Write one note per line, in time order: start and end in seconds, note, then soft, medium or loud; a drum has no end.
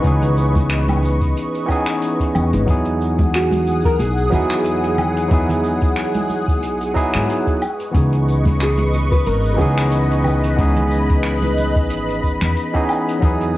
0.00 1.66 E3 medium
0.00 0.03 B3 medium
0.00 1.64 B3 medium
0.00 0.04 C#4 medium
0.00 0.05 D#4 medium
0.00 0.07 G#4 loud
0.00 2.63 B4 medium
0.00 2.63 D#5 medium
0.00 2.63 C#6 medium
0.00 kick loud
0.00 closed hi-hat medium
0.04 1.32 C#2 medium
0.04 1.65 C#4 medium
0.04 1.66 D#4 medium
0.04 1.67 G#4 medium
0.04 shaker soft
0.22 closed hi-hat soft
0.22 low conga medium
0.22 shaker soft
0.37 shaker medium
0.55 kick loud
0.55 closed hi-hat medium
0.55 high conga medium
0.55 shaker medium
0.70 finger snap medium
0.70 closed hi-hat medium
0.70 shaker medium
0.88 closed hi-hat soft
0.88 high conga medium
0.88 low woodblock medium
0.88 shaker soft
1.03 high conga medium
1.03 shaker medium
1.21 kick medium
1.21 closed hi-hat medium
1.21 shaker soft
1.37 closed hi-hat medium
1.37 shaker soft
1.54 closed hi-hat soft
1.54 shaker soft
1.66 2.63 E3 medium
1.66 2.63 B3 medium
1.66 2.64 C#4 medium
1.66 kick medium
1.66 low woodblock medium
1.66 shaker medium
1.70 2.65 D#4 medium
1.70 2.65 G#4 loud
1.86 finger snap medium
1.86 closed hi-hat medium
1.86 shaker soft
2.02 closed hi-hat medium
2.02 shaker medium
2.20 kick medium
2.20 closed hi-hat medium
2.20 shaker soft
2.35 2.50 E2 loud
2.35 low woodblock medium
2.35 shaker medium
2.53 2.65 G#1 medium
2.53 closed hi-hat medium
2.53 shaker soft
2.65 3.95 E2 medium
2.65 4.28 F#3 medium
2.65 4.28 B3 medium
2.65 4.29 D#4 medium
2.65 4.29 E4 medium
2.65 7.58 G#4 medium
2.65 7.58 F#5 medium
2.65 7.58 D#6 medium
2.65 kick loud
2.65 closed hi-hat medium
2.65 shaker medium
2.71 4.30 G#4 medium
2.85 closed hi-hat soft
3.01 shaker medium
3.19 kick medium
3.19 closed hi-hat medium
3.19 high conga medium
3.19 shaker soft
3.34 3.85 F#4 medium
3.34 finger snap medium
3.34 closed hi-hat medium
3.34 shaker medium
3.51 closed hi-hat soft
3.51 high conga medium
3.51 shaker soft
3.67 high conga medium
3.67 shaker medium
3.85 4.00 A#4 loud
3.85 kick medium
3.85 closed hi-hat medium
3.85 shaker soft
3.99 4.27 B1 medium
3.99 4.32 G#4 medium
3.99 closed hi-hat medium
3.99 shaker medium
4.18 shaker soft
4.29 5.27 E2 medium
4.29 5.26 F#3 medium
4.29 5.27 B3 medium
4.29 5.27 D#4 medium
4.29 4.94 F#4 medium
4.29 kick medium
4.29 low conga medium
4.29 shaker medium
4.33 5.28 E4 medium
4.33 5.29 G#4 loud
4.50 finger snap medium
4.50 closed hi-hat medium
4.50 shaker soft
4.64 closed hi-hat medium
4.64 shaker medium
4.83 closed hi-hat soft
4.98 low conga medium
4.98 low woodblock medium
4.98 shaker medium
5.16 closed hi-hat medium
5.16 shaker soft
5.28 6.63 E2 medium
5.28 6.91 F#3 medium
5.28 6.91 B3 medium
5.28 6.92 D#4 medium
5.28 kick loud
5.28 closed hi-hat medium
5.28 shaker medium
5.32 6.93 E4 medium
5.32 6.94 G#4 medium
5.49 closed hi-hat medium
5.49 low conga medium
5.64 shaker medium
5.81 kick loud
5.81 closed hi-hat soft
5.81 shaker soft
5.96 finger snap medium
5.96 closed hi-hat medium
5.96 shaker medium
6.14 closed hi-hat soft
6.14 high conga medium
6.14 shaker soft
6.30 high conga medium
6.30 shaker medium
6.48 kick medium
6.48 closed hi-hat medium
6.48 shaker soft
6.62 7.09 B1 medium
6.62 closed hi-hat medium
6.62 shaker medium
6.81 closed hi-hat soft
6.81 shaker soft
6.94 7.59 F#3 medium
6.94 7.60 B3 medium
6.94 7.60 D#4 medium
6.94 7.60 E4 medium
6.94 7.60 G#4 loud
6.94 kick medium
6.94 shaker medium
7.14 7.27 G#2 medium
7.14 finger snap medium
7.14 closed hi-hat medium
7.14 shaker soft
7.29 closed hi-hat medium
7.29 shaker medium
7.47 kick medium
7.47 closed hi-hat soft
7.61 13.18 B4 medium
7.61 13.18 D#5 medium
7.61 10.23 C#6 medium
7.61 low woodblock medium
7.61 shaker medium
7.79 closed hi-hat medium
7.79 shaker medium
7.91 9.23 C#2 medium
7.91 9.54 E3 medium
7.91 9.55 B3 medium
7.91 9.56 C#4 medium
7.91 kick loud
7.91 closed hi-hat medium
7.95 9.56 D#4 medium
7.95 9.57 G#4 medium
7.95 shaker medium
8.12 closed hi-hat soft
8.28 shaker medium
8.45 kick loud
8.45 closed hi-hat medium
8.45 high conga medium
8.45 shaker soft
8.60 9.11 G#4 medium
8.60 finger snap medium
8.60 closed hi-hat medium
8.60 shaker medium
8.78 closed hi-hat soft
8.78 high conga medium
8.78 shaker soft
8.93 high conga medium
8.93 shaker medium
9.12 9.26 B4 medium
9.12 kick medium
9.12 closed hi-hat medium
9.12 shaker soft
9.26 9.55 G#1 medium
9.26 9.53 A#4 medium
9.26 closed hi-hat medium
9.26 shaker medium
9.45 shaker soft
9.54 10.53 E3 medium
9.54 10.54 B3 medium
9.54 10.21 G#4 medium
9.54 9.57 A#4 medium
9.59 10.54 C#2 medium
9.59 10.55 C#4 medium
9.59 10.56 D#4 medium
9.59 10.56 G#4 loud
9.59 kick medium
9.59 low conga medium
9.59 shaker medium
9.77 finger snap medium
9.77 closed hi-hat medium
9.77 shaker medium
9.91 closed hi-hat medium
9.91 shaker medium
10.11 closed hi-hat soft
10.24 13.19 B5 medium
10.24 low conga medium
10.24 low woodblock medium
10.24 shaker medium
10.43 closed hi-hat medium
10.43 shaker medium
10.56 11.91 C#2 medium
10.56 12.18 E3 medium
10.56 12.19 B3 medium
10.56 12.20 C#4 medium
10.56 12.20 D#4 medium
10.56 kick loud
10.56 closed hi-hat medium
10.56 shaker medium
10.61 12.21 G#4 medium
10.76 closed hi-hat soft
10.76 low conga medium
10.91 shaker medium
11.09 kick loud
11.09 closed hi-hat soft
11.09 shaker soft
11.23 finger snap medium
11.23 closed hi-hat medium
11.23 shaker medium
11.42 closed hi-hat soft
11.42 high conga medium
11.42 shaker soft
11.58 high conga medium
11.58 shaker medium
11.76 kick medium
11.76 closed hi-hat medium
11.76 shaker soft
11.90 12.37 G#1 medium
11.90 closed hi-hat medium
11.90 shaker medium
12.08 closed hi-hat soft
12.08 shaker soft
12.23 kick medium
12.23 shaker medium
12.41 12.54 E2 medium
12.41 finger snap medium
12.41 closed hi-hat medium
12.41 shaker medium
12.55 closed hi-hat medium
12.55 shaker medium
12.73 13.18 E3 medium
12.73 13.19 B3 medium
12.73 13.19 C#4 medium
12.73 13.19 D#4 medium
12.73 13.20 G#4 loud
12.73 kick medium
12.73 closed hi-hat soft
12.89 low woodblock medium
12.89 shaker medium
13.08 closed hi-hat medium
13.08 shaker soft
13.19 13.57 E2 medium
13.19 13.57 F#3 medium
13.19 13.57 B3 medium
13.19 13.57 D#4 medium
13.19 13.57 G#4 medium
13.19 13.57 F#5 medium
13.19 13.57 D#6 medium
13.19 kick loud
13.19 closed hi-hat medium
13.19 shaker medium
13.24 13.57 E4 medium
13.24 13.57 G#4 medium
13.41 closed hi-hat soft